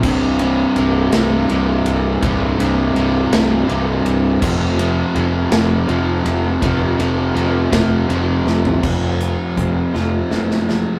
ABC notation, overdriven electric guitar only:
X:1
M:6/8
L:1/8
Q:3/8=55
K:Fdor
V:1 name="Overdriven electric guitar" clef=bass
[C,,G,,C,] [C,,G,,C,] [C,,G,,C,] [C,,G,,C,] [C,,G,,C,]2 | [C,,G,,C,] [C,,G,,C,] [C,,G,,C,] [C,,G,,C,] [C,,G,,C,]2 | [F,,C,F,] [F,,C,F,] [F,,C,F,] [F,,C,F,] [F,,C,F,]2 | [F,,C,F,] [F,,C,F,] [F,,C,F,] [F,,C,F,] [F,,C,F,]2 |
z6 |]